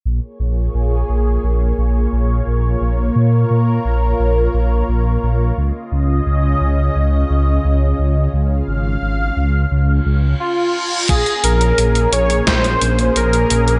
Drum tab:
CC |----------------|----------------|----------------|----------------|
HH |----------------|----------------|----------------|----------------|
SD |----------------|----------------|----------------|----------------|
BD |----------------|----------------|----------------|----------------|

CC |x---------------|
HH |xxxxxxxxxxxxxxxx|
SD |--------o-------|
BD |o-------o-------|